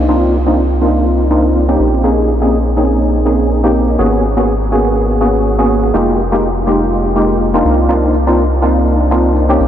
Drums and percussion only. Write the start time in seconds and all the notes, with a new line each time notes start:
0.09 tambourine
0.33 tambourine
0.47 tambourine
0.58 tambourine
0.82 tambourine
0.96 tambourine
1.06 tambourine
1.31 tambourine
1.44 tambourine
1.55 tambourine
1.69 tambourine
1.79 tambourine
1.93 tambourine
2.04 tambourine
2.28 tambourine
2.42 tambourine
2.53 tambourine
2.77 tambourine
2.91 tambourine
3.02 tambourine
3.26 tambourine
3.40 tambourine
3.50 tambourine
3.64 tambourine
3.75 tambourine
3.88 tambourine
3.99 tambourine
4.13 tambourine
4.24 tambourine
4.37 tambourine
4.48 tambourine
4.61 tambourine
4.72 tambourine
4.86 tambourine
4.97 tambourine
5.21 tambourine
5.35 tambourine
5.46 tambourine
5.59 tambourine
5.70 tambourine
5.84 tambourine
5.94 tambourine
6.19 tambourine
6.32 tambourine
6.43 tambourine
6.67 tambourine
6.81 tambourine
6.92 tambourine
7.16 tambourine
7.30 tambourine
7.41 tambourine
7.54 tambourine
7.65 tambourine
7.79 tambourine
7.89 tambourine
8.14 tambourine
8.27 tambourine
8.38 tambourine
8.63 tambourine
8.76 tambourine
8.87 tambourine
9.11 tambourine
9.25 tambourine
9.36 tambourine
9.50 tambourine
9.60 tambourine